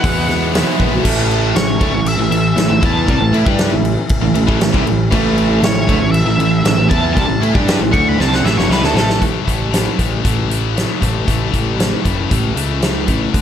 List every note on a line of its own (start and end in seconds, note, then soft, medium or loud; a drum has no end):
0.00 0.62 E2 medium
0.00 0.27 E3 medium
0.00 0.52 E3 loud
0.00 0.29 G#3 loud
0.00 0.27 G#3 medium
0.00 0.51 F#5 loud
0.00 kick loud
0.00 open hi-hat medium
0.04 0.28 B3 medium
0.04 0.28 B3 loud
0.04 0.27 E4 loud
0.04 0.29 F#4 medium
0.28 0.53 E3 medium
0.28 0.54 G#3 medium
0.28 0.52 G#3 medium
0.28 0.54 B3 medium
0.28 0.54 E4 medium
0.28 0.55 F#4 medium
0.28 snare soft
0.53 0.80 E2 medium
0.53 0.80 B2 medium
0.53 1.02 E3 medium
0.53 0.78 E3 medium
0.53 1.03 G#3 medium
0.53 0.79 G#3 medium
0.53 1.04 B3 medium
0.53 0.79 B3 medium
0.53 1.04 E4 medium
0.53 0.80 F#4 loud
0.53 snare loud
0.53 open hi-hat medium
0.80 0.99 A#1 medium
0.80 0.92 E3 medium
0.80 0.92 G#3 medium
0.80 0.93 B3 medium
0.80 0.93 F#4 medium
0.80 kick medium
0.94 1.05 E3 soft
0.94 1.05 G#3 soft
0.94 1.06 B3 soft
0.94 1.06 F#4 medium
1.03 1.52 A1 medium
1.03 1.54 A2 medium
1.03 1.43 A2 medium
1.03 1.54 E3 medium
1.03 1.43 E3 medium
1.03 1.55 A3 medium
1.03 1.43 A3 medium
1.03 1.42 C#4 medium
1.03 1.40 E4 medium
1.03 kick medium
1.03 crash loud
1.03 crash medium
1.31 crash medium
1.41 1.54 A3 soft
1.41 1.54 C#4 soft
1.41 1.55 E4 soft
1.55 1.79 A1 medium
1.55 1.93 A2 medium
1.55 1.76 A2 medium
1.55 1.76 E3 medium
1.55 1.94 E3 medium
1.55 1.93 A3 medium
1.55 1.93 C#4 medium
1.55 1.91 E4 medium
1.55 2.05 C#5 medium
1.55 snare loud
1.55 crash medium
1.80 1.92 D2 medium
1.80 1.92 D3 loud
1.80 1.93 A3 loud
1.80 kick loud
1.80 crash medium
1.93 2.17 A1 medium
1.93 2.14 A2 medium
1.93 2.14 E3 medium
1.93 2.19 A3 soft
1.93 2.18 C#4 soft
1.93 2.16 E4 soft
2.06 2.81 E5 medium
2.06 crash medium
2.17 2.30 A1 medium
2.17 2.30 A2 medium
2.17 2.31 E3 medium
2.17 2.28 A3 soft
2.17 2.30 C#4 soft
2.17 2.30 E4 soft
2.29 2.55 A1 medium
2.29 2.52 A2 medium
2.29 2.43 E3 medium
2.29 2.52 E3 medium
2.29 2.43 A3 medium
2.29 2.43 C#4 medium
2.29 2.41 E4 medium
2.29 crash medium
2.42 2.56 A3 soft
2.42 2.55 C#4 soft
2.42 2.56 E4 soft
2.56 2.69 A1 medium
2.56 2.82 A2 medium
2.56 2.67 A2 medium
2.56 2.79 E3 medium
2.56 2.68 E3 medium
2.56 2.81 A3 medium
2.56 2.81 C#4 medium
2.56 2.82 E4 medium
2.56 snare medium
2.56 crash medium
2.69 2.82 A1 medium
2.69 2.81 A2 medium
2.69 2.80 E3 medium
2.80 3.07 E2 medium
2.80 2.94 E3 soft
2.80 3.06 E3 medium
2.80 2.95 A3 medium
2.80 3.07 B3 medium
2.80 2.95 C#4 medium
2.80 3.07 E4 loud
2.80 2.94 E4 medium
2.80 kick loud
2.80 crash medium
2.86 3.09 A5 medium
2.95 3.07 A3 soft
2.95 3.08 C#4 soft
2.95 3.08 E4 soft
3.07 3.20 C2 medium
3.07 3.46 A2 medium
3.07 3.19 C3 medium
3.07 3.46 E3 medium
3.07 3.20 G3 loud
3.07 3.46 A3 medium
3.07 3.46 C#4 medium
3.07 3.45 E4 medium
3.07 kick loud
3.07 crash medium
3.11 3.34 A5 loud
3.20 3.31 A1 medium
3.20 3.33 A2 medium
3.20 3.33 E3 medium
3.32 3.45 A2 medium
3.32 3.44 A3 medium
3.32 3.45 E4 medium
3.32 crash medium
3.44 3.70 G2 medium
3.44 3.70 G3 medium
3.44 3.58 C#4 medium
3.44 3.71 D4 medium
3.44 3.59 E4 medium
3.44 3.71 G4 medium
3.44 kick loud
3.49 3.58 A3 soft
3.58 3.97 A2 medium
3.58 3.97 E3 medium
3.58 3.97 A3 loud
3.58 3.97 C#4 loud
3.58 3.96 E4 loud
3.58 snare loud
3.58 crash medium
3.69 3.96 A1 medium
3.69 3.91 A2 medium
3.69 3.91 E3 medium
3.85 crash medium
3.98 4.24 A3 soft
3.98 4.24 C#4 soft
3.98 4.23 E4 medium
4.09 kick loud
4.09 crash medium
4.22 4.34 A1 medium
4.22 4.33 A2 medium
4.22 4.34 E3 medium
4.22 4.36 C#4 soft
4.22 4.36 E4 medium
4.27 4.36 A3 soft
4.34 4.48 A1 medium
4.34 4.46 A2 medium
4.34 4.46 E3 medium
4.34 4.61 E3 medium
4.34 4.62 A3 medium
4.34 4.62 C#4 medium
4.34 crash medium
4.38 4.62 E4 medium
4.47 4.60 A1 loud
4.47 4.60 A2 medium
4.47 4.60 E3 loud
4.47 kick loud
4.61 4.73 A1 medium
4.61 4.72 A2 medium
4.61 4.87 A2 medium
4.61 4.72 E3 medium
4.61 4.84 E3 medium
4.61 4.86 A3 loud
4.61 4.86 C#4 medium
4.61 4.87 E4 medium
4.61 snare loud
4.61 crash medium
4.73 4.86 C2 loud
4.73 4.85 C3 loud
4.73 4.85 G3 medium
4.73 kick loud
4.85 5.11 A1 medium
4.85 5.07 A2 medium
4.85 4.98 E3 medium
4.85 5.07 E3 medium
4.85 4.99 A3 medium
4.85 4.99 C#4 medium
4.85 4.98 E4 medium
4.85 crash medium
4.99 5.10 A3 soft
4.99 5.11 C#4 medium
4.99 5.11 E4 medium
5.10 5.60 A1 loud
5.10 5.49 A2 medium
5.10 5.61 A2 medium
5.10 5.61 E3 medium
5.10 5.50 E3 medium
5.10 5.50 A3 medium
5.10 5.62 A3 loud
5.10 5.48 C#4 medium
5.10 5.47 E4 loud
5.10 kick loud
5.10 crash medium
5.38 crash medium
5.48 5.61 A3 soft
5.48 5.61 C#4 medium
5.48 5.61 E4 soft
5.60 5.86 A1 medium
5.60 6.26 A2 medium
5.60 5.83 A2 medium
5.60 6.37 E3 medium
5.60 5.83 E3 medium
5.60 6.28 A3 medium
5.60 6.26 C#4 medium
5.60 6.25 E4 medium
5.60 6.11 C#5 medium
5.60 snare loud
5.60 crash medium
5.87 6.00 D2 medium
5.87 5.99 D3 medium
5.87 6.00 A3 loud
5.87 kick medium
5.87 crash medium
5.99 6.25 A1 medium
5.99 6.21 A2 medium
5.99 6.21 E3 medium
6.12 6.87 E5 medium
6.12 crash medium
6.25 6.38 A1 medium
6.25 6.39 A2 medium
6.25 6.39 E3 medium
6.25 6.38 A3 soft
6.25 6.39 C#4 medium
6.25 6.39 E4 medium
6.37 6.63 A1 medium
6.37 6.61 A2 medium
6.37 6.64 E3 medium
6.37 6.60 E3 medium
6.37 6.64 A3 medium
6.37 6.65 C#4 medium
6.37 6.65 E4 medium
6.37 crash medium
6.65 6.76 A1 medium
6.65 6.91 A2 medium
6.65 6.77 A2 medium
6.65 6.77 E3 medium
6.65 6.90 E3 medium
6.65 6.91 A3 medium
6.65 6.91 C#4 medium
6.65 6.92 E4 medium
6.65 snare loud
6.65 crash medium
6.77 6.89 A1 medium
6.77 6.88 A2 medium
6.77 6.87 E3 medium
6.89 7.15 E2 medium
6.89 7.14 E3 medium
6.89 7.04 E3 medium
6.89 7.04 A3 medium
6.89 7.15 B3 medium
6.89 7.04 C#4 medium
6.89 7.15 E4 loud
6.89 7.12 A5 medium
6.89 kick loud
6.89 crash medium
6.94 7.02 E4 medium
7.03 7.16 A3 soft
7.03 7.16 C#4 soft
7.03 7.16 E4 soft
7.13 7.28 C2 medium
7.13 7.55 A2 medium
7.13 7.27 C3 medium
7.13 7.55 E3 medium
7.13 7.26 G3 medium
7.13 7.55 A3 medium
7.13 7.40 A5 loud
7.13 kick medium
7.18 7.54 C#4 medium
7.18 7.53 E4 medium
7.18 crash medium
7.27 7.41 A1 medium
7.27 7.41 A2 medium
7.27 7.41 E3 medium
7.41 7.54 A2 medium
7.41 7.54 A3 medium
7.41 7.54 E4 medium
7.41 crash soft
7.54 7.79 G2 medium
7.54 7.80 G3 medium
7.54 7.67 A3 soft
7.54 7.68 C#4 medium
7.54 7.80 D4 medium
7.54 7.67 E4 medium
7.54 7.80 G4 medium
7.54 kick loud
7.67 8.31 A2 medium
7.67 8.32 E3 medium
7.67 8.32 A3 medium
7.67 8.32 C#4 loud
7.67 8.30 E4 medium
7.67 snare loud
7.67 crash medium
7.79 7.92 A1 medium
7.79 7.91 A2 medium
7.79 7.92 E3 medium
7.91 8.17 D2 medium
7.91 8.17 D3 medium
7.91 8.18 A3 medium
7.91 8.18 D4 loud
7.91 8.09 C#6 medium
7.91 kick medium
7.91 crash medium
8.09 8.20 B5 medium
8.19 8.43 C2 medium
8.19 8.43 C3 medium
8.19 8.43 G3 loud
8.19 8.44 C4 medium
8.19 8.35 A5 medium
8.19 snare medium
8.31 8.44 A3 soft
8.31 8.45 C#4 soft
8.31 8.44 E4 medium
8.31 snare medium
8.35 8.46 F#5 medium
8.43 8.55 A1 medium
8.43 8.56 A2 medium
8.43 8.56 E3 medium
8.43 8.68 E3 medium
8.43 8.70 A3 medium
8.43 8.70 C#4 medium
8.43 8.70 E4 medium
8.43 8.57 E5 loud
8.43 snare medium
8.56 8.68 G1 loud
8.56 8.69 G2 medium
8.56 8.69 D3 medium
8.56 8.70 C#5 loud
8.56 snare medium
8.69 8.81 C2 medium
8.69 8.96 A2 medium
8.69 8.82 C3 medium
8.69 8.94 E3 medium
8.69 8.82 G3 loud
8.69 8.95 A3 medium
8.69 8.95 C#4 medium
8.69 8.96 E4 medium
8.69 8.84 B4 medium
8.69 snare medium
8.82 8.93 D2 loud
8.82 8.94 D3 medium
8.82 8.93 A3 loud
8.82 8.95 A4 medium
8.82 snare medium
8.94 9.19 A1 loud
8.94 9.18 A2 medium
8.94 9.19 E3 medium
8.94 9.09 E3 medium
8.94 9.19 A3 loud
8.94 9.09 A3 medium
8.94 9.09 C#4 medium
8.94 9.21 A4 loud
8.94 snare loud
9.08 9.23 A3 soft
9.08 9.22 C#4 soft
9.08 9.21 E4 medium
9.08 snare medium
9.19 9.31 A1 medium
9.19 9.44 A2 medium
9.19 9.44 E3 medium
9.19 9.45 A3 medium
9.19 kick medium
9.19 closed hi-hat medium
9.44 9.87 A1 medium
9.44 9.71 A2 medium
9.44 9.70 E3 medium
9.44 9.71 A3 medium
9.44 kick medium
9.48 closed hi-hat soft
9.70 9.97 A2 medium
9.70 9.98 E3 medium
9.70 9.99 A3 medium
9.70 snare medium
9.70 closed hi-hat medium
9.98 10.18 A1 medium
9.98 10.22 A2 medium
9.98 10.22 E3 medium
9.98 10.23 A3 medium
9.98 kick medium
9.98 closed hi-hat medium
10.23 10.83 A1 medium
10.23 10.48 A2 medium
10.23 10.48 E3 medium
10.23 10.49 A3 medium
10.23 kick loud
10.23 closed hi-hat medium
10.49 10.75 A2 medium
10.49 10.75 E3 medium
10.49 10.75 A3 medium
10.49 closed hi-hat medium
10.76 10.99 A2 loud
10.76 10.99 E3 medium
10.76 11.01 A3 medium
10.76 snare medium
10.76 closed hi-hat medium
11.01 11.22 A1 medium
11.01 11.25 A2 medium
11.01 11.26 E3 medium
11.01 11.26 A3 medium
11.01 kick medium
11.01 closed hi-hat medium
11.26 11.47 A1 medium
11.26 11.48 A2 medium
11.26 11.49 E3 medium
11.26 11.51 A3 medium
11.26 kick medium
11.26 closed hi-hat medium
11.49 11.76 A2 medium
11.49 11.75 E3 medium
11.49 11.77 A3 medium
11.54 11.93 A1 medium
11.54 kick medium
11.54 closed hi-hat soft
11.77 12.02 A2 medium
11.77 12.02 E3 medium
11.77 12.03 A3 medium
11.77 snare loud
11.77 closed hi-hat medium
12.03 12.25 F#1 medium
12.03 12.28 A2 medium
12.03 12.29 E3 medium
12.03 12.30 A3 medium
12.03 kick medium
12.03 closed hi-hat medium
12.29 12.51 A1 medium
12.29 12.54 A2 medium
12.29 12.54 E3 loud
12.29 12.56 A3 loud
12.29 kick loud
12.29 closed hi-hat medium
12.55 13.08 C#2 medium
12.55 12.80 A2 medium
12.55 12.81 E3 medium
12.55 12.82 A3 loud
12.55 closed hi-hat medium
12.81 13.05 A2 medium
12.81 13.05 E3 medium
12.81 13.07 A3 medium
12.81 snare medium
12.81 closed hi-hat medium
13.06 13.28 A1 medium
13.06 13.31 A2 medium
13.06 13.31 E3 medium
13.06 13.33 A3 medium
13.06 kick medium
13.06 closed hi-hat medium
13.32 13.41 D2 medium
13.32 13.41 D3 medium
13.32 13.41 A3 medium
13.32 13.41 D4 medium
13.32 kick loud
13.32 closed hi-hat medium